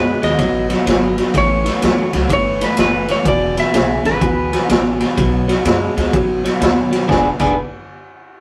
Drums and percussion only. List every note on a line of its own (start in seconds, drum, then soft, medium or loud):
0.23 snare soft
0.23 ride medium
0.39 kick loud
0.39 snare soft
0.39 ride medium
0.70 snare soft
0.70 ride medium
0.87 snare loud
0.87 ride medium
1.18 snare soft
1.18 ride medium
1.34 kick loud
1.34 snare soft
1.34 ride medium
1.66 snare soft
1.66 ride medium
1.82 snare loud
1.82 ride medium
2.13 snare soft
2.13 ride medium
2.30 kick loud
2.30 ride medium
2.61 snare soft
2.61 ride medium
2.77 snare loud
2.77 ride medium
3.08 snare soft
3.08 ride medium
3.25 kick loud
3.25 ride medium
3.57 snare soft
3.57 ride medium
3.74 snare loud
3.74 ride medium
4.05 snare soft
4.05 ride soft
4.21 kick loud
4.21 ride medium
4.53 snare soft
4.53 ride medium
4.69 snare loud
4.69 ride medium
5.00 snare soft
5.00 ride medium
5.18 kick loud
5.18 snare soft
5.18 ride medium
5.49 snare soft
5.49 ride medium
5.65 snare loud
5.65 ride medium
5.97 snare soft
5.97 ride medium
6.13 kick loud
6.13 ride medium
6.45 snare soft
6.45 ride medium
6.61 snare loud
6.61 ride medium
6.92 snare soft
6.92 ride medium
7.09 kick loud
7.09 snare medium
7.39 kick medium
7.39 crash medium